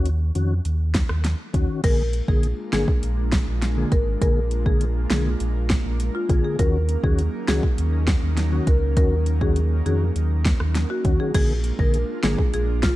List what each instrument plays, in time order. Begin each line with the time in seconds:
Already playing: sub bass D#2
0.05 closed hi-hat
0.35 sub bass F2, tonewheel organ D#3 C#4 F#4, closed hi-hat
0.65 sub bass D#2, closed hi-hat
0.94 kick, snare, closed hi-hat
1.09 sub bass D#2, cross-stick
1.24 snare, closed hi-hat
1.53 sub bass D#2, tonewheel organ D#3 C#4 F#4, kick, closed hi-hat
1.84 sub bass A#1, tonewheel organ D3 A#3 G#4, analog synth pad G#3 A#3 D4 F4 A#4, marimba A#4, kick, closed hi-hat, crash
2.13 closed hi-hat
2.28 sub bass A#1, tonewheel organ D3 A#3 G#4, marimba G#4, kick
2.43 closed hi-hat
2.73 sub bass G#1, tonewheel organ D3 A#3 G#4, marimba G#4, snare, closed hi-hat
2.88 kick
3.03 sub bass A#1, closed hi-hat
3.32 kick, snare, closed hi-hat
3.47 sub bass A#1
3.62 snare, closed hi-hat
3.77 tonewheel organ D3 A#3 G#4
3.92 sub bass G#1, marimba A#4, kick, closed hi-hat
4.21 sub bass A#1, tonewheel organ D3 A#3 G#4, marimba A#4, kick, closed hi-hat
4.51 closed hi-hat
4.66 tonewheel organ D3 A#3 G#4, marimba G#4, kick
4.81 closed hi-hat
5.10 sub bass B1, tonewheel organ D3 A#3 G#4, marimba G#4, snare, closed hi-hat
5.40 sub bass A#1, closed hi-hat
5.70 kick, snare, closed hi-hat
5.85 sub bass A#1
6.00 closed hi-hat
6.15 marimba F4
6.29 sub bass A#1, tonewheel organ D3 A#3 G#4, kick, closed hi-hat
6.44 marimba G#4
6.59 sub bass D#2, tonewheel organ D#3 C#4 F#4, analog synth pad F#3 C#4 D#4, marimba A#4, kick, closed hi-hat
6.89 closed hi-hat
7.03 sub bass D#2, tonewheel organ D#3 C#4 F#4, marimba G#4, kick
7.18 closed hi-hat
7.48 sub bass C#2, tonewheel organ D#3 C#4 F#4, marimba G#4, snare, closed hi-hat
7.63 kick
7.78 sub bass D#2, closed hi-hat
8.07 kick, snare, closed hi-hat
8.23 sub bass D#2
8.37 snare, closed hi-hat
8.52 tonewheel organ D#3 C#4 F#4
8.67 sub bass C#2, marimba A#4, kick, closed hi-hat
8.96 sub bass D#2, tonewheel organ D#3 C#4 F#4, marimba A#4, kick, closed hi-hat
9.26 closed hi-hat
9.41 tonewheel organ D#3 C#4 F#4, marimba G#4, kick
9.56 closed hi-hat
9.86 sub bass F2, tonewheel organ D#3 C#4 F#4, marimba G#4, closed hi-hat
10.16 sub bass D#2, closed hi-hat
10.45 kick, snare, closed hi-hat
10.60 sub bass D#2, cross-stick
10.75 snare, closed hi-hat
10.90 marimba F#4
11.04 sub bass D#2, tonewheel organ D#3 C#4 F#4, kick, closed hi-hat
11.20 marimba G#4
11.34 sub bass A#1, tonewheel organ D3 A#3 G#4, analog synth pad G#3 A#3 D4 F4 A#4, marimba G#4, kick, closed hi-hat, crash
11.64 closed hi-hat
11.79 sub bass A#1, tonewheel organ D3 A#3 G#4, marimba A#4, kick
11.94 closed hi-hat
12.23 sub bass G#1, tonewheel organ D3 A#3 G#4, marimba G#4, snare, closed hi-hat
12.38 kick
12.53 sub bass A#1, marimba G#4, closed hi-hat
12.83 marimba F4, kick, snare, closed hi-hat